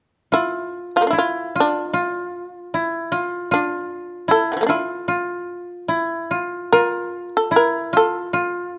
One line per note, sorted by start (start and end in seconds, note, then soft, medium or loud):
0.32 0.90 E4 medium
0.32 1.19 F4 medium
0.96 1.02 F3 soft
0.96 1.10 F4 medium
1.01 1.14 A3 soft
1.01 1.07 A#3 soft
1.07 1.21 D4 soft
1.07 1.18 E4 soft
1.13 1.61 E4 soft
1.18 1.54 F4 medium
1.55 1.93 F4 medium
1.60 1.87 D4 medium
1.87 2.05 D#4 medium
1.93 2.80 F4 medium
2.05 3.11 E4 medium
2.74 3.18 E4 medium
3.12 3.51 F4 medium
3.51 4.26 D4 medium
3.51 4.34 F4 medium
4.28 4.75 E4 medium
4.28 4.67 A4 medium
4.52 4.61 D3 soft
4.52 4.66 E3 soft
4.57 4.62 F3 soft
4.61 4.73 A3 soft
4.61 4.66 A#3 soft
4.67 4.79 D4 soft
4.67 6.26 E4 medium
4.67 5.08 F4 medium
5.08 5.94 F4 medium
5.88 6.37 E4 soft
6.31 6.72 F4 soft
6.72 7.57 F4 medium
6.72 7.28 A#4 medium
7.37 7.53 A4 medium
7.51 7.99 E4 medium
7.56 7.91 A#4 medium
7.93 8.33 F4 medium
7.93 8.78 A4 medium
8.33 8.78 F4 medium